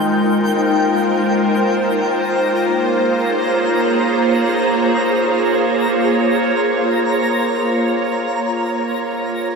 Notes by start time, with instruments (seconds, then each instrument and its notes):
Already playing: ambient pad G#3 D#4 F4 A#4 C5, harmonium A#3 F4, synth texture G5
1.56 ambient pad A#3, synth texture A#5
1.95 ambient pad C#5
2.35 ambient pad G#4